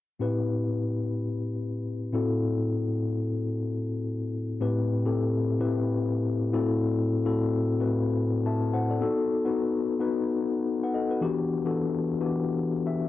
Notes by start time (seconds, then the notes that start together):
0.19 A2 C4 E4 G4 B4
2.12 A2 C4 E4 F#4 A4
4.60 A2 C4 E4 G4 B4
5.05 A2 C4 E4 G4 A4
5.60 A2 C4 E4 G4 B4
6.53 A2 C4 E4 F#4 A4
7.25 A2 C4 E4 F#4 A4
7.80 A2 C4 E4 F#4 B4
8.46 E5 A5
8.73 C5 F#5
8.90 A4 D5
9.01 B3 D#4 F#4 A4
9.45 B3 D#4 F#4 B4
10.00 B3 D#4 F#4 B4
10.84 B4 F#5
10.94 A4 D#5
11.11 F#4 B4
11.21 E3 B3 D4 F#4 G4
11.65 E3 B3 D4 F#4 A4
12.20 E3 B3 D4 F#4 G4
12.87 E5